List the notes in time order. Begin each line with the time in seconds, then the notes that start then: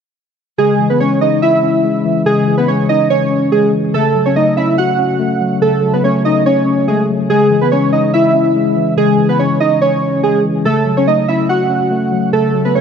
0.58 C#3 G#3 G#4
0.79 E3
0.90 B3 B4
1.00 G#3 C#4 C#5
1.21 C#4 D#4 D#5
1.42 E4 E5
1.63 C#4
1.84 G#3
2.05 E3
2.26 C#3 G#3 G#4
2.47 E3
2.58 B3 B4
2.68 G#3 C#4 C#5
2.89 C#4 D#4 D#5
3.10 C#4 C#5
3.31 C#4
3.52 G#3 G#4
3.73 E3
3.94 C#3 A3 A4
4.15 F#3
4.26 C#4 C#5
4.36 A3 D#4 D#5
4.57 C#4 E4 E5
4.78 F#4 F#5
4.99 C#4
5.20 A3
5.41 F#3
5.62 C#3 A3 A4
5.83 F#3
5.93 B3 B4
6.04 A3 C#4 C#5
6.25 C#4 D#4 D#5
6.46 C#4 C#5
6.66 C#4
6.88 G#3 A3 G#4
7.09 F#3
7.30 C#3 G#3 G#4
7.51 E3
7.61 B3 B4
7.72 G#3 C#4 C#5
7.92 C#4 D#4 D#5
8.14 E4 E5
8.34 C#4
8.55 G#3
8.77 E3
8.97 C#3 G#3 G#4
9.19 E3
9.29 B3 B4
9.39 G#3 C#4 C#5
9.60 C#4 D#4 D#5
9.81 C#4 C#5
10.02 C#4
10.23 G#3 G#4
10.44 E3
10.65 C#3 A3 A4
10.86 F#3
10.97 C#4 C#5
11.07 A3 D#4 D#5
11.28 C#4 E4 E5
11.49 F#4 F#5
11.70 C#4
11.91 A3
12.12 F#3
12.33 C#3 A3 A4
12.54 F#3
12.65 B3 B4
12.75 A3 C#4 C#5